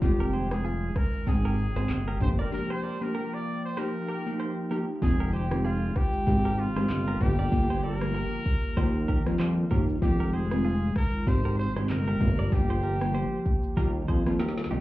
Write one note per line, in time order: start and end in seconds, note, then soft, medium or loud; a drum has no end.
0.00 0.92 F1 loud
0.00 1.24 D#3 medium
0.00 0.47 D#3 medium
0.00 0.47 G#3 medium
0.00 2.19 G#3 medium
0.00 0.47 C4 medium
0.00 1.24 F4 medium
0.00 0.47 F4 loud
0.00 0.48 G4 medium
0.00 kick loud
0.00 shaker medium
0.20 0.30 G4 medium
0.20 0.30 A#4 medium
0.32 0.47 G#4 medium
0.32 0.47 C5 medium
0.32 shaker medium
0.51 0.63 D#3 medium
0.51 0.63 G#3 medium
0.51 0.63 C4 medium
0.51 0.63 F4 medium
0.51 0.98 G#4 medium
0.51 cross-stick loud
0.51 shaker medium
0.65 0.88 F4 medium
0.65 0.88 G#4 medium
0.65 shaker medium
0.96 1.30 A#4 medium
0.96 kick loud
0.96 cross-stick medium
0.96 shaker medium
1.13 shaker medium
1.27 1.68 G#1 loud
1.27 2.20 C3 medium
1.27 1.72 D#3 loud
1.27 1.72 G#3 medium
1.27 1.72 C4 medium
1.27 2.21 G#4 medium
1.27 4.98 G5 medium
1.27 1.72 G5 loud
1.27 kick loud
1.27 shaker medium
1.45 1.55 G4 medium
1.45 1.55 A#4 medium
1.59 shaker medium
1.76 1.87 G#1 medium
1.76 2.17 D#3 medium
1.76 2.18 G#3 medium
1.76 2.18 C4 medium
1.76 1.87 G#4 medium
1.76 1.86 C5 medium
1.76 2.18 G5 medium
1.76 cross-stick medium
1.76 shaker medium
1.89 2.16 G1 loud
1.89 clap medium
1.89 shaker medium
2.08 2.18 G4 medium
2.08 2.17 A#4 medium
2.20 2.47 G1 loud
2.20 2.50 F3 medium
2.20 4.99 F3 medium
2.20 2.50 A#3 medium
2.20 3.75 A#3 medium
2.20 2.50 D4 medium
2.20 2.50 G4 medium
2.20 2.30 C5 loud
2.20 kick medium
2.20 mid tom medium
2.20 shaker medium
2.39 2.49 A#4 medium
2.39 2.52 A#4 medium
2.39 2.49 D5 medium
2.39 shaker medium
2.52 2.97 F3 medium
2.52 2.97 A#3 medium
2.52 2.97 D4 medium
2.52 2.97 G4 loud
2.52 2.73 A#4 loud
2.70 2.80 G#4 medium
2.70 2.80 C5 medium
2.70 3.04 C5 loud
2.83 2.97 A#4 medium
2.83 2.97 D5 medium
3.01 3.13 F3 medium
3.01 3.13 A#3 medium
3.01 3.13 D4 medium
3.01 3.13 G4 medium
3.01 3.35 A#4 medium
3.15 3.38 G4 medium
3.15 3.38 A#4 medium
3.34 3.64 D5 loud
3.65 3.80 C5 loud
3.77 4.22 F3 loud
3.77 4.22 A#3 medium
3.77 5.01 D#4 medium
3.77 4.22 D#4 medium
3.77 4.22 G4 loud
3.77 3.91 G4 medium
3.77 4.71 A#4 medium
3.77 3.90 C5 medium
4.08 4.22 G4 medium
4.08 4.22 A#4 medium
4.26 4.67 F3 medium
4.26 4.68 A#3 medium
4.26 4.68 D#4 medium
4.26 4.68 G4 medium
4.40 4.53 G4 medium
4.40 4.53 C5 medium
4.71 5.00 F3 medium
4.71 5.00 A#3 medium
4.71 5.00 D#4 medium
4.71 5.00 G4 medium
4.71 4.85 G4 medium
4.71 4.84 A#4 medium
5.02 5.92 F1 loud
5.02 5.47 D#3 medium
5.02 6.26 D#3 medium
5.02 7.18 G#3 medium
5.02 5.47 G#3 medium
5.02 5.47 C4 medium
5.02 6.26 F4 medium
5.02 5.47 F4 loud
5.02 5.32 G#4 loud
5.02 kick loud
5.02 shaker medium
5.20 5.30 G4 medium
5.20 5.30 A#4 medium
5.32 5.63 G4 medium
5.32 5.47 G#4 medium
5.32 5.47 C5 medium
5.32 shaker medium
5.51 5.63 D#3 medium
5.51 5.63 G#3 medium
5.51 5.63 C4 medium
5.51 5.63 F4 medium
5.51 cross-stick loud
5.51 shaker medium
5.65 5.88 F4 medium
5.65 5.98 F4 medium
5.65 5.88 G#4 medium
5.65 shaker medium
5.96 6.61 G4 loud
5.96 kick loud
5.96 cross-stick medium
5.96 shaker medium
6.13 shaker medium
6.27 6.68 G#1 loud
6.27 7.20 C3 medium
6.27 6.72 D#3 medium
6.27 6.72 G#3 medium
6.27 6.72 C4 medium
6.27 8.74 G4 medium
6.27 6.72 G4 loud
6.27 kick loud
6.27 shaker medium
6.45 6.55 G4 medium
6.45 6.55 A#4 medium
6.59 7.23 F4 loud
6.59 shaker medium
6.76 6.87 G#1 medium
6.76 7.17 D#3 medium
6.76 7.18 G#3 medium
6.76 7.18 C4 medium
6.76 7.18 G4 medium
6.76 6.87 G#4 medium
6.76 6.86 C5 medium
6.76 cross-stick medium
6.76 shaker medium
6.89 7.16 G1 loud
6.89 clap loud
6.89 shaker medium
7.08 7.18 G4 medium
7.08 7.17 A#4 medium
7.20 8.25 G1 loud
7.20 7.50 D3 medium
7.20 8.75 F3 medium
7.20 7.50 G3 medium
7.20 8.75 A#3 medium
7.20 7.50 A#3 medium
7.20 7.50 F4 medium
7.20 7.84 G4 loud
7.20 kick medium
7.20 mid tom medium
7.20 shaker medium
7.39 7.49 A#4 medium
7.39 7.49 D5 medium
7.39 shaker medium
7.52 7.97 D3 medium
7.52 7.97 G3 medium
7.52 7.97 A#3 medium
7.52 7.97 F4 loud
7.52 kick loud
7.52 shaker medium
7.70 7.80 G#4 medium
7.70 7.80 C5 medium
7.82 9.67 A#4 loud
7.82 7.97 A#4 medium
7.82 7.97 D5 medium
7.82 shaker medium
8.01 8.13 D3 medium
8.01 8.13 G3 medium
8.01 8.13 A#3 medium
8.01 8.13 F4 medium
8.01 cross-stick loud
8.01 shaker medium
8.15 8.38 G4 medium
8.15 8.38 A#4 medium
8.15 shaker medium
8.46 kick loud
8.46 shaker medium
8.63 shaker medium
8.77 9.18 D#2 loud
8.77 9.22 D#3 loud
8.77 10.01 D#3 medium
8.77 9.22 G3 medium
8.77 10.01 G3 medium
8.77 9.22 A#3 medium
8.77 10.01 F4 medium
8.77 9.22 F4 loud
8.77 8.91 G4 medium
8.77 8.90 C5 medium
8.77 kick loud
8.77 shaker medium
9.08 9.22 G4 medium
9.08 9.22 A#4 medium
9.08 kick loud
9.08 shaker medium
9.26 9.37 F2 loud
9.26 9.67 D#3 medium
9.26 9.68 G3 medium
9.26 9.68 A#3 medium
9.26 9.68 F4 medium
9.26 cross-stick medium
9.26 shaker medium
9.39 9.66 F2 loud
9.39 9.53 G4 medium
9.39 9.53 C5 medium
9.39 clap loud
9.39 shaker medium
9.71 9.97 D#2 medium
9.71 10.00 D#3 medium
9.71 10.00 G3 medium
9.71 10.00 A#3 medium
9.71 10.00 F4 medium
9.71 9.85 G4 medium
9.71 9.84 A#4 medium
9.71 kick medium
9.71 mid tom medium
9.71 shaker medium
9.89 shaker medium
10.02 10.92 F1 loud
10.02 10.47 D#3 loud
10.02 11.26 D#3 medium
10.02 10.47 G#3 medium
10.02 12.19 G#3 medium
10.02 10.47 C4 medium
10.02 11.26 F4 medium
10.02 10.47 F4 loud
10.02 10.36 G4 loud
10.02 kick loud
10.02 shaker medium
10.20 10.30 G4 medium
10.20 10.30 A#4 medium
10.32 10.47 G#4 medium
10.32 10.96 G#4 loud
10.32 10.47 C5 medium
10.32 shaker medium
10.51 10.63 D#3 medium
10.51 10.63 G#3 medium
10.51 10.63 C4 medium
10.51 10.63 F4 medium
10.51 cross-stick loud
10.51 shaker medium
10.65 10.88 F4 medium
10.65 10.88 G#4 medium
10.65 shaker medium
10.96 11.29 A#4 loud
10.96 kick loud
10.96 cross-stick loud
10.96 shaker medium
11.13 shaker medium
11.27 11.68 G#1 loud
11.27 12.20 C3 medium
11.27 11.72 D#3 medium
11.27 11.72 G#3 medium
11.27 11.72 C4 medium
11.27 12.20 G4 medium
11.27 11.72 G4 loud
11.27 11.59 C5 loud
11.27 kick loud
11.27 shaker medium
11.45 11.55 G4 medium
11.45 11.55 A#4 medium
11.59 11.73 C5 loud
11.59 shaker medium
11.76 11.87 G#1 medium
11.76 12.17 D#3 medium
11.76 12.18 G#3 medium
11.76 12.18 C4 medium
11.76 12.18 G4 medium
11.76 11.87 G#4 medium
11.76 11.86 C5 medium
11.76 cross-stick medium
11.76 shaker medium
11.89 12.16 G1 loud
11.89 12.55 A#4 loud
11.89 clap medium
11.89 shaker medium
12.08 12.18 G4 medium
12.08 12.17 A#4 medium
12.20 13.25 G1 medium
12.20 12.50 D3 medium
12.20 13.75 F3 medium
12.20 12.50 G3 medium
12.20 13.75 A#3 medium
12.20 12.50 A#3 medium
12.20 12.50 F4 medium
12.20 13.75 G4 medium
12.20 kick medium
12.20 mid tom medium
12.20 shaker medium
12.39 12.49 A#4 medium
12.39 12.49 D5 medium
12.39 shaker medium
12.52 12.97 D3 loud
12.52 12.97 G3 medium
12.52 12.97 A#3 medium
12.52 12.97 F4 loud
12.52 13.78 G4 loud
12.52 kick loud
12.52 shaker medium
12.70 12.80 G#4 medium
12.70 12.80 C5 medium
12.82 12.97 G4 medium
12.82 12.97 A#4 medium
12.82 shaker medium
13.01 13.13 D3 medium
13.01 13.13 G3 medium
13.01 13.13 A#3 medium
13.01 13.13 F4 medium
13.01 cross-stick loud
13.01 shaker medium
13.15 13.38 G4 medium
13.15 13.38 C5 medium
13.15 shaker medium
13.46 kick loud
13.46 shaker medium
13.63 shaker medium
13.77 14.03 D#2 loud
13.77 14.22 D#3 loud
13.77 14.80 D#3 medium
13.77 14.22 G3 medium
13.77 14.80 G3 medium
13.77 14.22 A#3 medium
13.77 14.80 F4 medium
13.77 14.22 F4 loud
13.77 13.91 G4 medium
13.77 13.90 A#4 medium
13.77 kick loud
13.77 shaker medium
14.08 14.24 F2 medium
14.08 14.22 G#4 medium
14.08 14.22 C5 medium
14.08 kick loud
14.08 shaker medium
14.26 14.41 F2 medium
14.26 14.67 D#3 medium
14.26 14.68 G3 medium
14.26 14.68 A#3 medium
14.26 14.68 F4 medium
14.26 cross-stick medium
14.26 shaker medium
14.39 14.66 D#2 medium
14.39 14.53 G4 medium
14.39 14.53 A#4 medium
14.39 snare medium
14.39 shaker medium
14.49 snare medium
14.58 snare medium
14.64 snare medium
14.70 14.80 C2 medium
14.70 14.80 D#3 medium
14.70 14.80 G3 medium
14.70 14.80 A#3 medium
14.70 14.80 D#4 medium
14.70 14.80 F4 medium
14.70 14.80 G4 medium
14.70 shaker medium